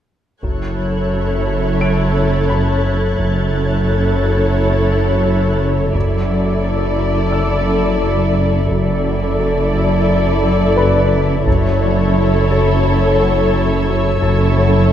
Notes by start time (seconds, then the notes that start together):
0.43 F#1 F#2 E4 A4 C#5 E5 F#6 G#6, taiko
0.79 F#3
1.13 F#2
1.47 F#2
1.81 F#2 A6 D7
2.16 F#3
2.50 F#2 B5
2.85 F#2
3.18 F#1 F#2 E4 A4 C#5 E5
3.54 F#3
3.89 F#2
4.23 F#2
4.58 F#2
4.93 F#3
5.27 F#2
5.61 F#2
5.94 F#1 F#2 E4 A4 D5 E5, taiko
6.30 F#3
6.64 F#2
6.99 F#2
7.32 F#2 E6
7.68 F#3
8.02 F#2
8.37 F#2
8.70 F#1 F#2 E4 A4 D5 E5
9.06 F#3
9.40 F#2
9.75 F#2
10.10 F#2
10.44 F#3
10.76 F#2 B4 B5
11.13 F#2
11.46 F#1 F#2 E4 A4 C#5 E5 C#6 G#6, taiko
11.83 F#3
12.16 F#2 E6
12.51 F#2
12.86 F#2
13.20 F#3
13.54 F#2
13.89 F#2
14.22 F#1 F#2 E4 A4 C#5 E5
14.57 F#3